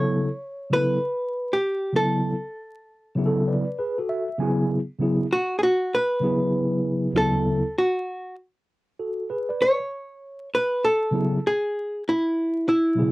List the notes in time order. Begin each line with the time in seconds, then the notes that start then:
Already playing: C#3 F#3 B3 E4 A4 C#5
0.70 C#3 F#3 B3 E4 B4
0.74 A4
1.53 G4
1.93 C#3 F#3 B3 E4 A4
1.97 A4
3.15 C#3 F#3 B3 E4 G#4
3.26 A4
3.48 B4 D5
3.79 G#4 B4
3.98 F#4 A4
4.09 E5
4.38 C#3 F#3 B3 E4 G#5
4.42 G#4
4.99 C#3 F#3 B3 E4 G#4
5.33 F#4
5.59 G#4
5.63 F#4
5.95 B4
6.20 C#3 F#3 B3 E4 G#4
7.13 D2 C#3 F#3 B3 E4
7.17 G#4 A4
7.23 A4
7.78 F#4
8.99 F#4 A4
9.30 G#4 B4
9.49 B4 D5
9.62 C#5
10.55 B4
10.85 A4
11.11 C#3 F#3 B3 E4 G#4
11.47 G#4
12.09 E4
12.69 E4
12.95 B2 F#3 B3 E4
12.99 C#3 G#4